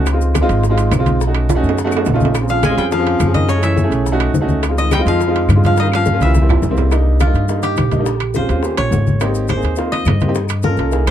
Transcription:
Already playing: C#2 B4 D#5
0.06 high bongo, high timbale, claves, maracas
0.12 G#3 C4 D#4 F4
0.21 high bongo, high conga, maracas
0.35 high bongo, high conga, high timbale, claves, maracas
0.41 G#3 C4 D#4 F4
0.49 G#1, high conga, high timbale, maracas
0.64 high bongo, high conga, maracas
0.70 G#3 C4 D#4 F4
0.78 high conga, high timbale, maracas
0.91 B1, high bongo, low bongo, high conga, high timbale, low timbale, claves, maracas
0.99 G#3 C4 D#4 F4
1.06 high bongo, high conga, high timbale, maracas
1.21 high bongo, high conga, maracas
1.27 A3 C#4 D#4 F#4
1.35 high bongo, high conga, high timbale, claves
1.49 high bongo, high conga, high timbale, maracas
1.55 A3 C#4 D#4 F#4
1.63 F#2, high bongo, high conga, maracas
1.69 low timbale
1.78 high bongo, high conga, maracas
1.84 A3 C#4 D#4 F#4, low timbale
1.92 high conga, claves, maracas
1.97 low timbale
2.05 A#1, high bongo, low bongo, high conga, low timbale, maracas
2.14 A3 C#4 D#4 F4, low timbale
2.20 high bongo, high conga, maracas
2.25 low timbale
2.35 high bongo, high conga, high timbale, claves, maracas
2.41 C4 C#4 F4 G#4
2.48 F3 F5, high bongo, high conga, maracas
2.63 G#3 G#5, high bongo, high conga, high timbale, claves, maracas
2.70 C4 C#4 F4 G#4
2.77 F2 G3 G5, high conga, high timbale, maracas
2.91 F3 F5, high bongo, high conga, maracas
2.98 C4 C#4 F4 G#4
3.06 high conga, high timbale
3.20 F#2, high bongo, low bongo, high conga, high timbale, claves, maracas
3.26 C4 C#4 F4 G#4
3.34 D#3 D#5, high bongo, high conga, high timbale, maracas
3.49 C#3 C#5, high bongo, high conga, maracas
3.55 A3 C#4 E4 G#4
3.63 E3 E5, high conga, high timbale, claves, maracas
3.77 high bongo, high conga, maracas
3.84 A3 C#4 E4 G#4
3.91 B1, high bongo, high conga, high timbale, maracas
4.06 high bongo, high conga, maracas
4.12 A3 C#4 D#4 F#4
4.20 high conga, high timbale, claves
4.34 C#2, high bongo, low bongo, high conga, maracas
4.41 A3 C#4 D#4 F#4
4.49 high bongo, high conga, maracas
4.63 high bongo, high conga, high timbale, claves, maracas
4.69 G#3 C4 D#4 F4
4.77 D#3 D#5, high bongo, high conga, maracas
4.91 G3 G5, high bongo, high conga, high timbale, claves, maracas
4.98 G#3 C4 D#4 F4
5.05 F2 F3 F5, high bongo, high conga, high timbale, maracas
5.21 high bongo, high conga, maracas
5.27 G#3 C4 D#4 F4
5.36 high conga, high timbale
5.48 G2, high bongo, low bongo, high conga, high timbale, claves, maracas
5.55 G#3 C4 D#4 F4
5.63 F3 F5, high bongo, high conga, high timbale, maracas
5.77 D#5, high bongo, high conga, maracas
5.81 D#3 G3 A#3 C#4
5.85 F4
5.92 F5, high bongo, high conga, high timbale, claves
5.96 F3
6.05 high bongo, high conga, maracas
6.13 G3 A#3 C#4 F4
6.20 C2 E5, high conga, high timbale, maracas
6.24 E3
6.34 high bongo, high conga, maracas
6.41 G3 A#3 C4 E4
6.49 low conga, high timbale, claves
6.62 C2, high bongo, low bongo, low conga, maracas
6.70 G3 A#3 C4 E4
6.77 high bongo, low conga, low timbale, maracas
6.91 G3 A#3 D4 D#4, high bongo, high conga, high timbale, claves, maracas
7.06 high bongo, high conga
7.20 F4, high bongo, high conga, high timbale, claves, maracas
7.26 G3 A#3 D4 D#4
7.34 G2, high bongo, high conga, high timbale, maracas
7.48 G3 A#3 D4 D#4, high bongo, high conga, maracas
7.63 G4, high conga, high timbale, maracas
7.76 A#1, high bongo, low bongo, high conga, high timbale, claves, maracas
7.92 G3 A#3 D4 D#4, high bongo, high conga, high timbale, maracas
7.99 G3 A#3 D4 D#4
8.06 high bongo, high conga, maracas
8.20 high bongo, high conga, high timbale, claves
8.34 G#3 C4 C#4 F4 C5, high bongo, high conga, maracas
8.49 D#2 G#3 C4 C#4 F4, high bongo, high conga, high timbale, maracas
8.63 A#3 C#4 F4 G4, high bongo, high conga, maracas
8.77 A#1 C#5, high conga, high timbale, claves
8.91 G#1, high bongo, low bongo, high conga, low timbale, maracas
9.07 high bongo, high conga, maracas
9.20 A#3 C4 D#4 G4, high bongo, high conga, high timbale, claves, maracas
9.35 high bongo, high conga, maracas
9.48 C5, high bongo, high conga, high timbale, claves, maracas
9.56 A#3 C4 D#4 G#4
9.62 D#2, high bongo, high conga, high timbale, maracas
9.76 A#3 C4 D#4 F4, high bongo, high conga, maracas
9.92 D#5, high conga, high timbale
10.05 G2, high bongo, low bongo, high conga, high timbale, low timbale, claves, maracas
10.20 A#3 C4 D#4 G4, high bongo, high conga, high timbale, maracas
10.28 A#3 C4 D#4 G4
10.35 high bongo, high conga, maracas
10.49 high bongo, high conga, high timbale, claves, maracas
10.62 A#3 C#4 F4 A4 A#4, high bongo, high conga, maracas
10.77 C2 A#3 C#4 F4 A4, high bongo, high conga, high timbale, maracas
10.92 A#3 D#4 E4 G#4, high bongo, high conga, maracas
11.06 D#2 C5, high conga, high timbale, claves

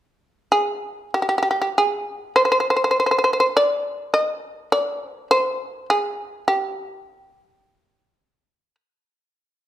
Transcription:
0.52 G#4
1.14 G4
1.22 G4
1.29 G4
1.38 G4
1.43 G4
1.51 G4
1.62 G4
1.78 G#4
2.36 C5
2.45 C5
2.52 C5
2.60 C5
2.70 C5
2.76 C5
2.84 C5
2.91 C5
3.00 C5
3.06 C5
3.11 C5
3.18 C5
3.24 C5
3.33 C5
3.40 C5
3.57 D5
4.14 D#5
4.72 D5
5.08 C5
5.31 C5
5.90 G#4
6.48 G4

